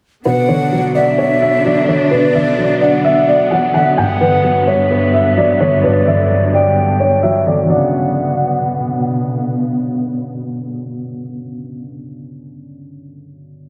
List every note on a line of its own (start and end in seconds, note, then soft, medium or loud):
0.25 1.42 B2 medium
0.25 3.94 D3 medium
0.25 7.66 B3 medium
0.25 3.94 D4 medium
0.25 0.47 B4 medium
0.25 0.91 F#5 loud
0.48 1.65 D3 medium
0.48 0.92 C#5 medium
0.72 1.63 F#3 medium
0.95 2.12 B3 medium
0.95 1.16 D5 medium
0.95 2.08 E5 medium
1.18 1.40 C#5 medium
1.42 1.63 E5 medium
1.65 2.56 F#3 medium
1.65 1.86 D5 medium
1.88 2.33 D3 medium
1.88 2.09 C#5 medium
2.11 3.28 B2 medium
2.11 2.32 B4 medium
2.11 2.77 D5 loud
2.35 3.51 D3 medium
2.35 2.78 E5 medium
2.58 3.50 F#3 medium
2.81 3.97 B3 medium
2.81 3.02 D5 medium
2.81 3.70 F#5 medium
3.05 3.26 E5 loud
3.28 3.49 D5 medium
3.51 3.98 F#3 medium
3.51 3.72 F#5 medium
3.74 3.97 D3 medium
3.74 3.96 E5 medium
3.74 3.95 F#5 medium
3.97 5.14 G2 medium
3.97 7.66 G2 medium
3.97 7.66 D3 medium
3.97 4.63 F#5 loud
3.97 4.19 G5 medium
4.21 5.37 D3 medium
4.21 4.64 B4 medium
4.44 5.36 F#3 medium
4.67 5.83 G3 medium
4.67 4.89 C#5 medium
4.67 5.80 E5 medium
4.91 5.12 B4 medium
5.14 5.35 E5 medium
5.37 6.29 F#3 medium
5.37 5.58 D5 medium
5.60 6.06 D3 medium
5.60 5.82 C#5 medium
5.83 7.00 G2 medium
5.83 6.05 B4 medium
5.83 6.49 D5 loud
6.07 7.23 D3 medium
6.07 6.50 E5 medium
6.30 7.22 F#3 medium
6.53 7.70 G3 medium
6.53 6.97 D5 medium
6.53 7.41 G5 medium
7.00 7.21 C#5 medium
7.23 7.66 F#3 medium
7.23 7.44 E5 medium
7.46 7.62 D3 medium
7.46 7.68 D5 medium
7.64 11.81 D3 medium
7.64 11.85 F#3 medium
7.70 11.87 B2 medium
7.70 11.87 B3 medium
7.70 11.89 B3 medium
7.70 9.05 D5 medium
7.70 9.05 F#5 medium
7.76 11.93 C#3 medium